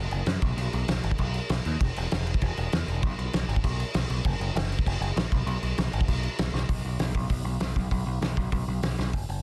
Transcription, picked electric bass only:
0.12 F#1
0.27 F#2
0.42 B1
0.57 B1
0.74 B1
0.88 B1
1.04 G#1
1.19 B1
1.50 B1
1.66 D#2
1.81 E1
1.97 E1
2.13 E1
2.42 E1
2.58 E1
2.73 E2
2.88 E1
3.03 B1
3.18 B1
3.34 B1
3.48 G#1
3.64 B1
3.95 B1
4.10 B1
4.25 F#1
4.40 F#1
4.55 F#1
4.87 F#1
5.01 F#1
5.16 A#1
5.32 B1
5.47 B1
5.63 B1
5.78 B1
5.93 G#1
6.08 B1
6.39 B1
6.53 B1
6.69 B1
6.85 B1
7.00 B1
7.15 B1
7.30 B1
7.45 B1
7.60 B1
7.76 B1
7.91 B1
8.06 B1
8.21 B1
8.37 B1
8.52 B1
8.68 B1
8.83 B1
8.99 B1
9.13 F#1
9.29 F#1

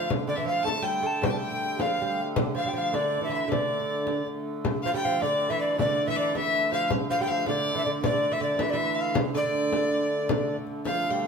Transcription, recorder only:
Already playing: F5
0.29 D5
0.39 E5
0.48 F5
0.67 A5
0.86 G5
1.06 A5
1.26 G5
1.82 F5
2.58 F5
2.69 G5
2.78 F5
2.95 D5
3.24 E5
3.35 E5
3.52 D5
4.87 F5
4.95 G5
5.05 F5
5.22 D5
5.50 E5
5.60 D5
5.80 D5
6.07 E5
6.18 D5
6.36 E5
6.73 F5
7.11 F5
7.21 G5
7.31 F5
7.49 D5
7.77 E5
7.85 D5
8.05 D5
8.33 E5
8.43 D5
8.62 E5
8.70 D5
8.77 E5
9.01 F5
9.37 D5
10.86 F5

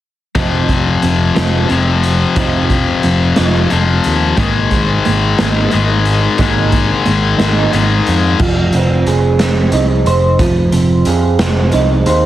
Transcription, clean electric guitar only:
0.35 F3 C4 D#4
0.68 F3 C4
1.03 F3 C4
1.35 F3 C4 D#4
1.69 F3 C4
2.36 F3 C4 D#4
2.70 F3 C4
3.04 F3 C4
3.37 F3 C4 D#4
3.70 F3 C4
4.37 G#3 A#3 D#4
4.72 G#3 A#3
5.05 G#3 A#3
5.39 G#3 A#3 D#4
5.72 G#3 A#3
6.38 G#3 A#3 D#4
6.72 G#3 A#3
7.05 G#3 A#3
7.38 G#3 A#3 D#4
7.72 G#3 A#3
8.39 F3
8.74 C4
9.07 G#4
9.41 C4
9.73 D#4
10.07 C5
10.40 F3
10.72 C4
11.07 G#4
11.40 C4
11.73 D#4
12.07 C5

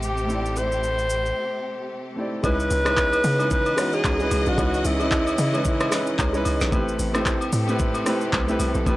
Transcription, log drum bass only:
2.44 C#2
2.71 C#2
3.24 C#3
4.05 C#2
4.31 C#2
4.47 B1
4.58 C#2
4.85 C#2
5.38 C#3
6.19 C#2
6.46 C#2
6.61 B1
6.72 A1
6.99 A1
7.53 A2
8.33 C2
8.60 C2
8.75 B1
8.86 A1

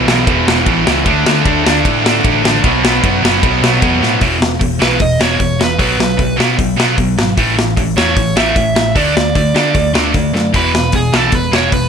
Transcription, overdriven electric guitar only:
4.82 B4
5.02 D#5
5.22 C#5
5.63 B4
5.81 B4
7.97 C#5
8.38 E5
8.97 D5
9.36 D5
10.56 B4
10.95 G#4
11.15 A4
11.35 B4
11.55 C#5
11.74 B4

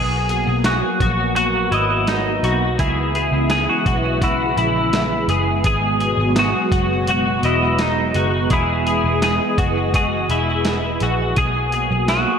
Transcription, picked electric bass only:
Already playing: B1
0.47 B1
1.00 A#1
1.72 G#1
2.43 B1
2.79 C#2
3.32 C#2
3.86 B1
4.57 A#1
5.28 F#1
5.64 G#1
6.17 G#1
6.72 F#1
7.43 E1
8.15 F#1
8.51 E1
9.04 E1
9.58 F#1
10.29 E1
11.01 A#1
11.37 B1
11.91 B1

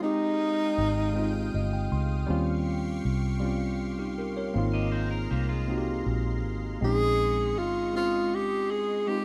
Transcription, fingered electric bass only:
0.03 F1
0.78 G#1
1.54 G1
1.92 C#2
2.29 D#2
3.05 C2
4.55 G#1
5.31 C2
6.06 A#1
6.45 G#1
6.82 A#1
7.57 G1
9.08 F1

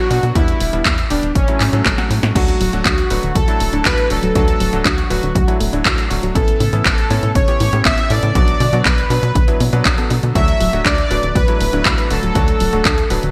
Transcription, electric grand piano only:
0.10 F#3 B3 D4 F#4
0.35 G3 B3 D4 E4
0.73 G3 B3 D4 E4
1.11 G3 B3 D4 G4
1.48 F#3 A3 C#4 E4
1.73 F#3 A3 C#4 A4
1.98 F#3 A3 C#4 F#4
2.36 F#3 A3 D4 F#4
2.73 F#3 A3 D4 F#4
3.10 F#3 A3 D4 B4
3.48 F#3 A3 D4 E4
3.73 F#3 A3 D4 E4
4.10 F#3 A3 D4 F#4
4.35 F#3 A3 D4 F#4
4.73 F#3 A3 D4 F#4
5.10 F#3 A3 D4 B4
5.48 F#3 A3 D4 E4
5.73 F#3 A3 D4 E4
6.10 F#3 A3 D4 F#4
6.35 B3 C#4 E4 A4
6.73 B3 C#4 E4 A4
7.10 B3 C#4 E4 C#5
7.48 B3 C#4 E4 G4
7.73 B3 C#4 E4 G4
8.10 B3 C#4 E4 A4
8.35 F#3 B3 D4 F#4
8.73 F#3 B3 D4 F#4
9.10 F#3 B3 D4 B4
9.48 F#3 B3 D4 E4
9.73 F#3 B3 D4 B4
9.98 F#3 B3 D4 A4
10.35 F#3 A3 D4 F#4
10.73 F#3 A3 D4 F#4
11.11 F#3 A3 D4 B4
11.48 F#3 A3 D4 E4
11.73 F#3 A3 D4 E4
12.11 F#3 A3 D4 F#4
12.36 F#3 A3 D4 F#4
12.73 F#3 A3 D4 F#4
13.10 F#3 A3 D4 B4

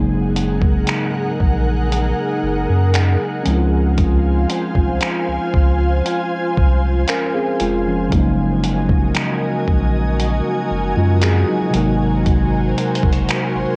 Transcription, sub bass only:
Already playing: F#1
1.40 A#1
2.43 F#1
2.69 F#2
3.47 C#2
4.75 C2
5.28 C#2
5.54 C#2
6.57 C2
7.61 F1
8.12 F#1
9.68 A#1
10.71 F#1
10.97 F#2
11.74 G#1
13.03 F#1
13.55 G#1

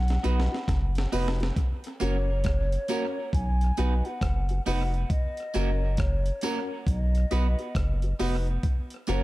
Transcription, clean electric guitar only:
0.23 B3 D#4 F#4 B4
1.12 B3 D#4 F#4 B4
2.00 A#3 C#4 F#4 A#4
2.89 A#3 C#4 F#4 A#4
3.77 B3 D#4 F#4 B4
4.66 B3 D#4 F#4 B4
5.54 A#3 C#4 F#4 A#4
6.43 A#3 C#4 F#4 A#4
7.31 B3 D#4 F#4 B4
8.19 B3 D#4 F#4 B4
9.07 A#3 C#4 F#4 A#4

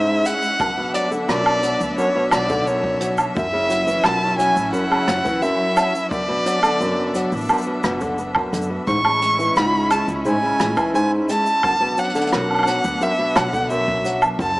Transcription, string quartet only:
Already playing: G#3 C#4 E4 E5
0.60 F#3 B3 D4
3.36 C#4 E4
6.12 B3 D4
8.87 G#3 C#4 E4
11.63 F#3 B3 D4
14.40 C#4 E4 A4

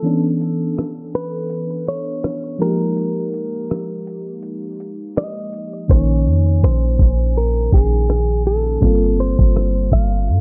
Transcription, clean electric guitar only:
Already playing: A4
1.15 B4
1.88 C#5
2.62 A#4
5.18 D#5
5.91 C#5
6.64 C5
7.38 A#4
7.74 G#4
8.47 A4
9.20 C5
9.93 F5

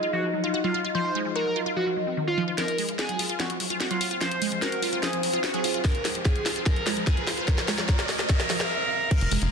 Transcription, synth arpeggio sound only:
0.03 F4
0.13 F3
0.23 F3
0.33 F#3
0.44 F4
0.54 F#4
0.64 F#3
0.74 F4
0.85 F4
0.95 F3
1.05 F3
1.15 G#3
1.25 F3
1.36 F#4
1.46 F#3
1.56 F4
1.66 F4
1.76 F3
1.87 F3
1.97 F#3
2.07 C4
2.17 D#3
2.27 F#3
2.38 F3
2.48 F4
2.58 F3
2.68 F3
2.78 G#3
2.89 F3
2.99 F#4
3.09 F#3
3.19 F4
3.29 F4
3.40 F3
3.50 F3
3.60 F#3
3.70 F4
3.80 F#4
3.91 F#3
4.01 F4
4.11 F4
4.21 F3
4.32 F3
4.42 G#3
4.52 F3
4.62 F#4
4.72 F#3
4.83 F4
4.93 F4
5.03 F3
5.13 F3
5.23 F#3
5.34 F4
5.44 F#4
5.54 F#3
5.64 F4
5.74 F4
5.85 F3
5.95 F3
6.05 G#3
6.15 F3
6.25 F4
6.36 F3
6.46 F4
6.56 F4
6.66 F3
6.76 F3
6.87 G#3
6.97 F3
7.07 F4
7.17 F3
7.27 F4
7.38 F4
7.48 F3
7.58 F3
7.68 G#3
7.78 F3
7.89 F3
7.99 F3
8.09 G#3
8.19 F3
8.29 F3
8.40 F3
8.50 F3
8.60 F3
9.11 F3
9.21 F3
9.31 G#3
9.42 F3

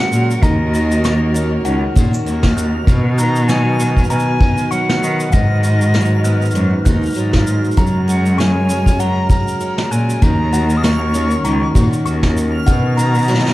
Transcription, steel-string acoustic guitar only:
Already playing: F#3 G#3 C#4 F#4
0.43 D#3
0.73 F#4
1.04 A#3
1.34 C#4
1.65 D#3
1.95 F#4
2.26 A#3
2.88 B2
3.18 D#4
3.49 F#3
3.80 B3
4.10 B2
4.41 D#4
4.72 F#3
5.33 G#2
5.63 D#4
5.94 F#3
6.24 B3
6.55 G#2
6.85 D#4
7.16 F#3
7.77 F#3
8.08 G#4
8.38 C#4
8.69 C#4
9.00 F#3
9.30 G#4
9.61 C#4
10.22 D#3
10.53 F#4
10.83 A#3
11.14 C#4
11.45 D#3
11.75 F#4
12.06 A#3
12.66 B2
12.98 D#4
13.28 F#3

